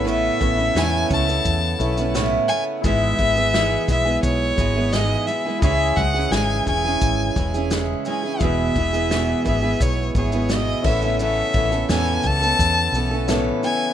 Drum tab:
CC |----------------|----------------|----------------|--------------x-|
SH |x-x-x-xxx-xxx-x-|x-xxx-x-x-x-x-x-|x-x-x-x-x-xxx-x-|x-xxx-x-x-xxx--x|
SD |----o-------o---|----o-------o---|---oo-------o---|----o-------o---|
BD |--o---o-o-------|o-o---o-o-o-----|o-o---o-o-o-----|o-o---o-o-o---o-|

CC |----------------|
SH |x-xxx-xxx-x-x-x-|
SD |---oo-------o---|
BD |--o---o-o-------|